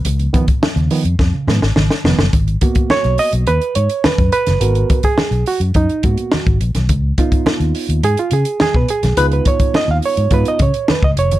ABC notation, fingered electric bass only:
X:1
M:4/4
L:1/16
Q:1/4=105
K:G#dor
V:1 name="Fingered electric bass" clef=bass
C,,2 z3 D,, z E,, E,, z G,, G,,, G,,, z E,,, F,,, | G,,,2 z3 B,,, z B,,, D,, z G,, z2 F,, z F,,, | G,,,2 z3 B,,, z F,, F,, z G,, z2 G,,, A,,, B,,, | C,,2 z3 D,, z D,, G,, z C, z2 B,, z B,,, |
C,,2 z3 D,, z G,, G,, z C, z2 C,, E,,, F,,, |]